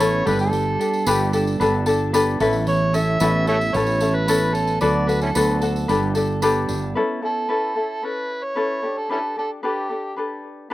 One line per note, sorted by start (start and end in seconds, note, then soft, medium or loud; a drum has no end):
0.00 0.23 A1 medium
0.00 0.26 E3 medium
0.00 1.06 B3 medium
0.00 0.26 C#4 medium
0.00 0.32 C#4 medium
0.00 0.26 E4 medium
0.00 0.56 A4 medium
0.00 0.24 A4 medium
0.00 0.25 B4 medium
0.00 0.24 C#5 loud
0.00 tambourine medium
0.25 0.76 G1 medium
0.25 0.52 G3 medium
0.25 0.80 D4 medium
0.25 0.79 G4 medium
0.25 0.79 A4 medium
0.25 0.80 B4 medium
0.25 0.40 B4 medium
0.25 tambourine soft
0.39 1.12 A4 medium
0.39 tambourine soft
0.53 2.40 G3 medium
0.53 tambourine soft
0.79 1.59 D4 medium
0.79 1.06 D4 soft
0.79 1.06 G4 soft
0.79 1.07 A4 medium
0.79 tambourine medium
0.93 tambourine soft
1.06 1.56 G1 loud
1.06 2.13 B3 medium
1.06 1.34 D4 medium
1.06 1.33 G4 medium
1.06 1.32 A4 medium
1.06 1.34 B4 medium
1.06 tambourine medium
1.12 1.44 G4 medium
1.33 1.59 D4 medium
1.33 1.59 G4 medium
1.33 1.60 A4 medium
1.33 1.86 A4 medium
1.33 tambourine medium
1.47 tambourine soft
1.60 2.37 G1 loud
1.60 2.46 D4 medium
1.60 1.87 D4 medium
1.60 1.86 G4 medium
1.60 1.85 A4 medium
1.60 1.87 B4 medium
1.60 tambourine soft
1.86 2.13 D4 medium
1.86 2.13 G4 medium
1.86 2.13 A4 medium
1.86 3.24 A4 medium
1.86 tambourine medium
2.13 2.96 B3 medium
2.13 2.41 D4 medium
2.13 2.41 G4 medium
2.13 2.39 A4 medium
2.13 2.40 B4 medium
2.13 tambourine medium
2.40 3.17 A1 medium
2.40 2.66 E3 medium
2.40 2.95 C#4 medium
2.40 2.94 E4 medium
2.40 2.94 A4 medium
2.40 2.94 B4 medium
2.40 tambourine soft
2.53 tambourine soft
2.67 4.81 E3 medium
2.67 2.97 C#5 loud
2.67 tambourine soft
2.94 3.74 C#4 medium
2.94 3.20 C#4 soft
2.94 3.20 E4 soft
2.94 3.20 A4 medium
2.94 3.48 E5 loud
2.94 tambourine medium
3.20 3.71 A1 loud
3.20 4.28 B3 medium
3.20 3.48 C#4 medium
3.20 3.47 E4 medium
3.20 3.46 A4 medium
3.20 3.47 B4 medium
3.20 tambourine medium
3.47 3.74 C#4 soft
3.47 3.74 E4 soft
3.47 3.74 A4 medium
3.47 4.01 A4 medium
3.47 3.57 A4 medium
3.47 3.57 C#5 medium
3.47 3.76 E5 loud
3.47 tambourine soft
3.61 tambourine soft
3.74 4.78 A1 loud
3.74 4.01 C#4 medium
3.74 4.54 C#4 medium
3.74 4.01 E4 medium
3.74 4.00 A4 medium
3.74 4.01 B4 medium
3.74 4.16 C#5 medium
3.74 tambourine soft
3.86 tambourine soft
4.00 4.27 C#4 soft
4.00 4.27 E4 medium
4.00 4.27 A4 medium
4.00 5.38 A4 medium
4.00 tambourine medium
4.15 4.56 B4 loud
4.28 5.35 B3 medium
4.28 4.81 C#4 medium
4.28 4.81 E4 medium
4.28 4.82 A4 medium
4.28 4.80 B4 medium
4.28 tambourine medium
4.55 4.87 C#4 medium
4.55 4.80 A4 medium
4.55 tambourine soft
4.67 tambourine soft
4.81 5.31 D2 loud
4.81 5.88 F#3 medium
4.81 5.08 D4 medium
4.81 5.08 F#4 medium
4.81 5.06 A4 medium
4.81 5.07 B4 medium
4.81 5.10 D5 medium
4.81 tambourine soft
5.08 5.94 D4 medium
5.08 5.34 D4 soft
5.08 5.35 F#4 soft
5.08 5.35 A4 soft
5.08 5.22 B4 medium
5.08 tambourine soft
5.21 5.30 C#4 soft
5.21 5.30 E4 soft
5.21 5.72 A4 medium
5.21 tambourine soft
5.35 5.85 D2 loud
5.35 6.18 B3 medium
5.35 5.62 D4 medium
5.35 5.61 F#4 medium
5.35 5.60 A4 medium
5.35 5.61 B4 medium
5.35 tambourine medium
5.61 5.88 D4 soft
5.61 5.89 F#4 soft
5.61 5.88 A4 medium
5.61 6.15 A4 medium
5.61 tambourine soft
5.76 tambourine soft
5.88 6.65 G1 medium
5.88 7.01 G3 medium
5.88 6.16 D4 medium
5.88 6.15 G4 medium
5.88 6.14 A4 medium
5.88 6.15 B4 medium
5.88 tambourine soft
6.15 6.41 D4 medium
6.15 6.42 G4 medium
6.15 6.42 A4 medium
6.15 7.51 A4 medium
6.15 tambourine medium
6.42 7.51 B3 medium
6.42 6.96 D4 medium
6.42 6.96 G4 medium
6.42 6.95 A4 medium
6.42 6.95 B4 medium
6.42 tambourine medium
6.69 6.94 G1 medium
6.69 7.01 D4 medium
6.69 tambourine soft
6.95 7.23 C#4 medium
6.95 7.22 E4 medium
6.95 7.21 A4 medium
6.95 7.22 B4 medium
7.22 7.48 C#4 soft
7.22 7.48 E4 soft
7.22 7.48 A4 soft
7.22 8.06 A4 medium
7.49 7.76 C#4 medium
7.49 7.76 E4 medium
7.49 7.74 A4 medium
7.49 7.75 B4 medium
7.76 8.02 C#4 soft
7.76 8.03 E4 soft
7.76 8.02 A4 soft
8.03 8.55 C#4 soft
8.03 8.55 E4 soft
8.03 8.56 A4 soft
8.03 8.55 B4 soft
8.03 8.45 B4 medium
8.44 9.00 C#5 medium
8.56 8.83 C#4 medium
8.56 8.83 E4 medium
8.56 8.81 A4 medium
8.56 8.82 B4 medium
8.82 9.09 D4 soft
8.82 9.09 G4 soft
8.82 9.10 A4 soft
8.98 9.11 A4 medium
9.09 9.18 C#4 soft
9.09 9.37 D4 medium
9.09 9.20 E4 soft
9.09 9.36 G4 medium
9.09 9.35 A4 medium
9.09 9.36 A4 medium
9.09 9.37 B4 medium
9.36 9.62 D4 soft
9.36 9.62 G4 soft
9.36 9.63 A4 soft
9.36 9.50 A4 medium
9.63 9.90 D4 medium
9.63 9.89 G4 medium
9.63 10.14 G4 medium
9.63 9.88 A4 medium
9.63 9.90 B4 medium
9.90 10.16 D4 soft
9.90 10.16 G4 soft
9.90 10.17 A4 soft
10.16 10.69 D4 medium
10.16 10.70 G4 soft
10.16 10.71 A4 medium
10.16 10.70 B4 soft
10.70 10.74 D4 medium
10.70 10.74 B4 medium